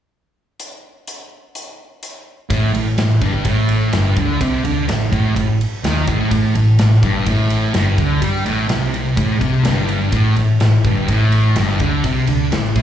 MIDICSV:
0, 0, Header, 1, 4, 480
1, 0, Start_track
1, 0, Tempo, 476948
1, 603, Time_signature, 4, 2, 24, 8
1, 12902, End_track
2, 0, Start_track
2, 0, Title_t, "Distorted electric guitar"
2, 0, Program_c, 0, 30
2, 2514, Note_on_c, 0, 45, 94
2, 2744, Note_off_c, 0, 45, 0
2, 2756, Note_on_c, 0, 45, 76
2, 2950, Note_off_c, 0, 45, 0
2, 2998, Note_on_c, 0, 45, 70
2, 3190, Note_off_c, 0, 45, 0
2, 3240, Note_on_c, 0, 43, 102
2, 3472, Note_off_c, 0, 43, 0
2, 3477, Note_on_c, 0, 45, 100
2, 3950, Note_off_c, 0, 45, 0
2, 3962, Note_on_c, 0, 43, 103
2, 4192, Note_off_c, 0, 43, 0
2, 4207, Note_on_c, 0, 50, 94
2, 4435, Note_off_c, 0, 50, 0
2, 4439, Note_on_c, 0, 48, 98
2, 4670, Note_off_c, 0, 48, 0
2, 4677, Note_on_c, 0, 50, 96
2, 4908, Note_off_c, 0, 50, 0
2, 4912, Note_on_c, 0, 45, 67
2, 5106, Note_off_c, 0, 45, 0
2, 5151, Note_on_c, 0, 45, 99
2, 5381, Note_off_c, 0, 45, 0
2, 5393, Note_on_c, 0, 45, 67
2, 5586, Note_off_c, 0, 45, 0
2, 5879, Note_on_c, 0, 51, 107
2, 6109, Note_off_c, 0, 51, 0
2, 6116, Note_on_c, 0, 45, 93
2, 6348, Note_off_c, 0, 45, 0
2, 6360, Note_on_c, 0, 45, 98
2, 6586, Note_off_c, 0, 45, 0
2, 6598, Note_on_c, 0, 45, 72
2, 6788, Note_off_c, 0, 45, 0
2, 6831, Note_on_c, 0, 45, 69
2, 7024, Note_off_c, 0, 45, 0
2, 7081, Note_on_c, 0, 43, 105
2, 7310, Note_off_c, 0, 43, 0
2, 7317, Note_on_c, 0, 45, 99
2, 7788, Note_off_c, 0, 45, 0
2, 7789, Note_on_c, 0, 43, 105
2, 8024, Note_off_c, 0, 43, 0
2, 8033, Note_on_c, 0, 50, 91
2, 8266, Note_off_c, 0, 50, 0
2, 8269, Note_on_c, 0, 55, 97
2, 8504, Note_off_c, 0, 55, 0
2, 8504, Note_on_c, 0, 45, 98
2, 8736, Note_off_c, 0, 45, 0
2, 8740, Note_on_c, 0, 48, 92
2, 9216, Note_off_c, 0, 48, 0
2, 9220, Note_on_c, 0, 45, 97
2, 9450, Note_off_c, 0, 45, 0
2, 9454, Note_on_c, 0, 48, 90
2, 9695, Note_on_c, 0, 43, 95
2, 9697, Note_off_c, 0, 48, 0
2, 10179, Note_off_c, 0, 43, 0
2, 10190, Note_on_c, 0, 45, 99
2, 10426, Note_off_c, 0, 45, 0
2, 10437, Note_on_c, 0, 45, 73
2, 10629, Note_off_c, 0, 45, 0
2, 10681, Note_on_c, 0, 45, 65
2, 10872, Note_off_c, 0, 45, 0
2, 10928, Note_on_c, 0, 43, 106
2, 11156, Note_off_c, 0, 43, 0
2, 11164, Note_on_c, 0, 45, 104
2, 11636, Note_off_c, 0, 45, 0
2, 11644, Note_on_c, 0, 43, 100
2, 11876, Note_off_c, 0, 43, 0
2, 11882, Note_on_c, 0, 50, 93
2, 12115, Note_off_c, 0, 50, 0
2, 12126, Note_on_c, 0, 48, 102
2, 12358, Note_off_c, 0, 48, 0
2, 12366, Note_on_c, 0, 50, 98
2, 12598, Note_off_c, 0, 50, 0
2, 12602, Note_on_c, 0, 45, 70
2, 12796, Note_off_c, 0, 45, 0
2, 12843, Note_on_c, 0, 45, 102
2, 12902, Note_off_c, 0, 45, 0
2, 12902, End_track
3, 0, Start_track
3, 0, Title_t, "Picked electric bass"
3, 0, Program_c, 1, 34
3, 2522, Note_on_c, 1, 33, 84
3, 2744, Note_off_c, 1, 33, 0
3, 2764, Note_on_c, 1, 33, 69
3, 2985, Note_off_c, 1, 33, 0
3, 2999, Note_on_c, 1, 33, 71
3, 3222, Note_off_c, 1, 33, 0
3, 3239, Note_on_c, 1, 31, 91
3, 3462, Note_off_c, 1, 31, 0
3, 3477, Note_on_c, 1, 33, 87
3, 3923, Note_off_c, 1, 33, 0
3, 3957, Note_on_c, 1, 31, 90
3, 4180, Note_off_c, 1, 31, 0
3, 4196, Note_on_c, 1, 38, 88
3, 4420, Note_off_c, 1, 38, 0
3, 4440, Note_on_c, 1, 36, 92
3, 4661, Note_off_c, 1, 36, 0
3, 4686, Note_on_c, 1, 38, 78
3, 4905, Note_off_c, 1, 38, 0
3, 4922, Note_on_c, 1, 33, 75
3, 5142, Note_off_c, 1, 33, 0
3, 5161, Note_on_c, 1, 33, 91
3, 5381, Note_off_c, 1, 33, 0
3, 5399, Note_on_c, 1, 33, 70
3, 5621, Note_off_c, 1, 33, 0
3, 5885, Note_on_c, 1, 39, 89
3, 6104, Note_off_c, 1, 39, 0
3, 6115, Note_on_c, 1, 33, 88
3, 6338, Note_off_c, 1, 33, 0
3, 6354, Note_on_c, 1, 33, 96
3, 6577, Note_off_c, 1, 33, 0
3, 6601, Note_on_c, 1, 33, 72
3, 6821, Note_off_c, 1, 33, 0
3, 6843, Note_on_c, 1, 33, 76
3, 7062, Note_off_c, 1, 33, 0
3, 7080, Note_on_c, 1, 31, 85
3, 7300, Note_off_c, 1, 31, 0
3, 7316, Note_on_c, 1, 33, 87
3, 7761, Note_off_c, 1, 33, 0
3, 7792, Note_on_c, 1, 31, 83
3, 8016, Note_off_c, 1, 31, 0
3, 8035, Note_on_c, 1, 38, 95
3, 8258, Note_off_c, 1, 38, 0
3, 8276, Note_on_c, 1, 43, 91
3, 8498, Note_off_c, 1, 43, 0
3, 8512, Note_on_c, 1, 33, 85
3, 8736, Note_off_c, 1, 33, 0
3, 8756, Note_on_c, 1, 36, 86
3, 9202, Note_off_c, 1, 36, 0
3, 9233, Note_on_c, 1, 33, 86
3, 9457, Note_off_c, 1, 33, 0
3, 9473, Note_on_c, 1, 36, 84
3, 9697, Note_off_c, 1, 36, 0
3, 9718, Note_on_c, 1, 31, 90
3, 10164, Note_off_c, 1, 31, 0
3, 10194, Note_on_c, 1, 33, 95
3, 10418, Note_off_c, 1, 33, 0
3, 10442, Note_on_c, 1, 33, 67
3, 10663, Note_off_c, 1, 33, 0
3, 10676, Note_on_c, 1, 33, 72
3, 10900, Note_off_c, 1, 33, 0
3, 10918, Note_on_c, 1, 31, 87
3, 11142, Note_off_c, 1, 31, 0
3, 11159, Note_on_c, 1, 33, 93
3, 11607, Note_off_c, 1, 33, 0
3, 11645, Note_on_c, 1, 31, 92
3, 11867, Note_off_c, 1, 31, 0
3, 11879, Note_on_c, 1, 38, 88
3, 12104, Note_off_c, 1, 38, 0
3, 12121, Note_on_c, 1, 36, 92
3, 12345, Note_off_c, 1, 36, 0
3, 12368, Note_on_c, 1, 38, 84
3, 12590, Note_off_c, 1, 38, 0
3, 12600, Note_on_c, 1, 33, 73
3, 12826, Note_off_c, 1, 33, 0
3, 12839, Note_on_c, 1, 33, 90
3, 12902, Note_off_c, 1, 33, 0
3, 12902, End_track
4, 0, Start_track
4, 0, Title_t, "Drums"
4, 600, Note_on_c, 9, 42, 56
4, 700, Note_off_c, 9, 42, 0
4, 1082, Note_on_c, 9, 42, 55
4, 1183, Note_off_c, 9, 42, 0
4, 1562, Note_on_c, 9, 42, 56
4, 1662, Note_off_c, 9, 42, 0
4, 2041, Note_on_c, 9, 42, 52
4, 2141, Note_off_c, 9, 42, 0
4, 2519, Note_on_c, 9, 36, 101
4, 2520, Note_on_c, 9, 51, 89
4, 2620, Note_off_c, 9, 36, 0
4, 2621, Note_off_c, 9, 51, 0
4, 2764, Note_on_c, 9, 51, 68
4, 2864, Note_off_c, 9, 51, 0
4, 2997, Note_on_c, 9, 51, 87
4, 3005, Note_on_c, 9, 38, 106
4, 3098, Note_off_c, 9, 51, 0
4, 3106, Note_off_c, 9, 38, 0
4, 3236, Note_on_c, 9, 36, 96
4, 3236, Note_on_c, 9, 51, 58
4, 3336, Note_off_c, 9, 51, 0
4, 3337, Note_off_c, 9, 36, 0
4, 3469, Note_on_c, 9, 51, 85
4, 3475, Note_on_c, 9, 36, 98
4, 3570, Note_off_c, 9, 51, 0
4, 3575, Note_off_c, 9, 36, 0
4, 3710, Note_on_c, 9, 51, 69
4, 3811, Note_off_c, 9, 51, 0
4, 3951, Note_on_c, 9, 51, 85
4, 3959, Note_on_c, 9, 38, 100
4, 4052, Note_off_c, 9, 51, 0
4, 4060, Note_off_c, 9, 38, 0
4, 4192, Note_on_c, 9, 51, 68
4, 4194, Note_on_c, 9, 36, 99
4, 4293, Note_off_c, 9, 51, 0
4, 4295, Note_off_c, 9, 36, 0
4, 4436, Note_on_c, 9, 36, 104
4, 4438, Note_on_c, 9, 51, 88
4, 4537, Note_off_c, 9, 36, 0
4, 4539, Note_off_c, 9, 51, 0
4, 4676, Note_on_c, 9, 51, 68
4, 4777, Note_off_c, 9, 51, 0
4, 4918, Note_on_c, 9, 51, 86
4, 4926, Note_on_c, 9, 38, 104
4, 5019, Note_off_c, 9, 51, 0
4, 5027, Note_off_c, 9, 38, 0
4, 5158, Note_on_c, 9, 36, 91
4, 5164, Note_on_c, 9, 51, 57
4, 5259, Note_off_c, 9, 36, 0
4, 5265, Note_off_c, 9, 51, 0
4, 5398, Note_on_c, 9, 36, 84
4, 5400, Note_on_c, 9, 51, 79
4, 5498, Note_off_c, 9, 36, 0
4, 5501, Note_off_c, 9, 51, 0
4, 5645, Note_on_c, 9, 51, 59
4, 5746, Note_off_c, 9, 51, 0
4, 5879, Note_on_c, 9, 51, 84
4, 5887, Note_on_c, 9, 38, 109
4, 5980, Note_off_c, 9, 51, 0
4, 5988, Note_off_c, 9, 38, 0
4, 6006, Note_on_c, 9, 38, 31
4, 6106, Note_off_c, 9, 38, 0
4, 6114, Note_on_c, 9, 36, 100
4, 6115, Note_on_c, 9, 51, 59
4, 6215, Note_off_c, 9, 36, 0
4, 6215, Note_off_c, 9, 51, 0
4, 6353, Note_on_c, 9, 51, 88
4, 6354, Note_on_c, 9, 36, 99
4, 6453, Note_off_c, 9, 51, 0
4, 6455, Note_off_c, 9, 36, 0
4, 6595, Note_on_c, 9, 51, 67
4, 6696, Note_off_c, 9, 51, 0
4, 6830, Note_on_c, 9, 51, 80
4, 6838, Note_on_c, 9, 38, 104
4, 6931, Note_off_c, 9, 51, 0
4, 6939, Note_off_c, 9, 38, 0
4, 6958, Note_on_c, 9, 38, 31
4, 7058, Note_off_c, 9, 38, 0
4, 7073, Note_on_c, 9, 51, 59
4, 7074, Note_on_c, 9, 36, 91
4, 7174, Note_off_c, 9, 51, 0
4, 7175, Note_off_c, 9, 36, 0
4, 7309, Note_on_c, 9, 51, 85
4, 7313, Note_on_c, 9, 36, 99
4, 7410, Note_off_c, 9, 51, 0
4, 7414, Note_off_c, 9, 36, 0
4, 7550, Note_on_c, 9, 51, 69
4, 7651, Note_off_c, 9, 51, 0
4, 7789, Note_on_c, 9, 51, 88
4, 7797, Note_on_c, 9, 38, 103
4, 7889, Note_off_c, 9, 51, 0
4, 7898, Note_off_c, 9, 38, 0
4, 8031, Note_on_c, 9, 51, 67
4, 8033, Note_on_c, 9, 36, 96
4, 8132, Note_off_c, 9, 51, 0
4, 8133, Note_off_c, 9, 36, 0
4, 8272, Note_on_c, 9, 51, 92
4, 8273, Note_on_c, 9, 36, 97
4, 8373, Note_off_c, 9, 36, 0
4, 8373, Note_off_c, 9, 51, 0
4, 8513, Note_on_c, 9, 51, 69
4, 8614, Note_off_c, 9, 51, 0
4, 8747, Note_on_c, 9, 51, 90
4, 8755, Note_on_c, 9, 38, 106
4, 8848, Note_off_c, 9, 51, 0
4, 8856, Note_off_c, 9, 38, 0
4, 8996, Note_on_c, 9, 51, 59
4, 9097, Note_off_c, 9, 51, 0
4, 9231, Note_on_c, 9, 51, 81
4, 9232, Note_on_c, 9, 36, 98
4, 9331, Note_off_c, 9, 51, 0
4, 9333, Note_off_c, 9, 36, 0
4, 9472, Note_on_c, 9, 36, 98
4, 9473, Note_on_c, 9, 51, 64
4, 9573, Note_off_c, 9, 36, 0
4, 9574, Note_off_c, 9, 51, 0
4, 9708, Note_on_c, 9, 51, 81
4, 9716, Note_on_c, 9, 38, 106
4, 9809, Note_off_c, 9, 51, 0
4, 9817, Note_off_c, 9, 38, 0
4, 9951, Note_on_c, 9, 51, 60
4, 10051, Note_off_c, 9, 51, 0
4, 10187, Note_on_c, 9, 51, 86
4, 10193, Note_on_c, 9, 36, 102
4, 10287, Note_off_c, 9, 51, 0
4, 10293, Note_off_c, 9, 36, 0
4, 10429, Note_on_c, 9, 51, 63
4, 10530, Note_off_c, 9, 51, 0
4, 10669, Note_on_c, 9, 51, 81
4, 10677, Note_on_c, 9, 38, 101
4, 10770, Note_off_c, 9, 51, 0
4, 10778, Note_off_c, 9, 38, 0
4, 10915, Note_on_c, 9, 36, 92
4, 10916, Note_on_c, 9, 51, 58
4, 11016, Note_off_c, 9, 36, 0
4, 11017, Note_off_c, 9, 51, 0
4, 11155, Note_on_c, 9, 36, 87
4, 11155, Note_on_c, 9, 51, 77
4, 11255, Note_off_c, 9, 51, 0
4, 11256, Note_off_c, 9, 36, 0
4, 11393, Note_on_c, 9, 51, 67
4, 11494, Note_off_c, 9, 51, 0
4, 11630, Note_on_c, 9, 51, 92
4, 11638, Note_on_c, 9, 38, 102
4, 11731, Note_off_c, 9, 51, 0
4, 11739, Note_off_c, 9, 38, 0
4, 11763, Note_on_c, 9, 38, 33
4, 11863, Note_off_c, 9, 38, 0
4, 11871, Note_on_c, 9, 51, 69
4, 11877, Note_on_c, 9, 36, 93
4, 11972, Note_off_c, 9, 51, 0
4, 11978, Note_off_c, 9, 36, 0
4, 12114, Note_on_c, 9, 51, 89
4, 12117, Note_on_c, 9, 36, 102
4, 12215, Note_off_c, 9, 51, 0
4, 12218, Note_off_c, 9, 36, 0
4, 12351, Note_on_c, 9, 51, 71
4, 12452, Note_off_c, 9, 51, 0
4, 12599, Note_on_c, 9, 51, 85
4, 12607, Note_on_c, 9, 38, 103
4, 12700, Note_off_c, 9, 51, 0
4, 12708, Note_off_c, 9, 38, 0
4, 12728, Note_on_c, 9, 38, 32
4, 12829, Note_off_c, 9, 38, 0
4, 12835, Note_on_c, 9, 51, 58
4, 12840, Note_on_c, 9, 36, 90
4, 12902, Note_off_c, 9, 36, 0
4, 12902, Note_off_c, 9, 51, 0
4, 12902, End_track
0, 0, End_of_file